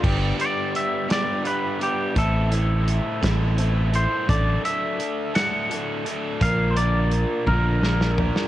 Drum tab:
CC |x-----------|------------|------------|------------|
HH |--x-x-x-x-x-|x-x-x-x-x-x-|x-x-x-x-x-x-|x-x-x-------|
SD |------o-----|------o-----|------o-----|--------oo-o|
T1 |------------|------------|------------|------o-----|
FT |------------|------------|------------|----------o-|
BD |o-----------|o-----o-----|o-----------|o-----o-----|